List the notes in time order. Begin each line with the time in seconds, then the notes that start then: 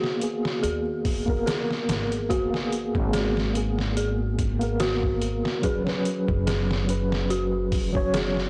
Already playing: A#3 B3 F#4 G#4
0.04 snare
0.20 A#3 B3 G#4, closed hi-hat
0.45 snare
0.63 D#2 G#4, closed hi-hat
1.05 kick, open hi-hat
1.26 A#3 B3 A#4, kick
1.46 G#4, snare, closed hi-hat
1.71 snare
1.89 G#1, snare, closed hi-hat
2.12 closed hi-hat
2.29 A#3 B3 F#4 G#4, kick, closed hi-hat
2.50 A#3 B3 G#4, snare
2.72 closed hi-hat
2.95 G#1, kick
3.13 G#4, snare, closed hi-hat
3.37 snare
3.53 A#3 B3 G#4, closed hi-hat
3.79 snare
3.97 G#4, closed hi-hat
4.39 kick, closed hi-hat
4.59 A#3 B3 A#4, closed hi-hat
4.80 F#4, snare, closed hi-hat
5.03 kick
5.22 closed hi-hat
5.45 snare
5.62 F#3 C#4 G#4 B4, kick, closed hi-hat
5.84 F#3 C#4, snare
5.89 B4
6.05 closed hi-hat
6.28 F#1, kick
6.47 G#4, snare, closed hi-hat
6.71 snare
6.86 F#3 C#4 B4, closed hi-hat
7.12 snare
7.30 F#4, closed hi-hat
7.72 kick, open hi-hat
7.92 F#3 C#4, kick
7.96 C#5
8.14 G#4, snare, closed hi-hat
8.37 snare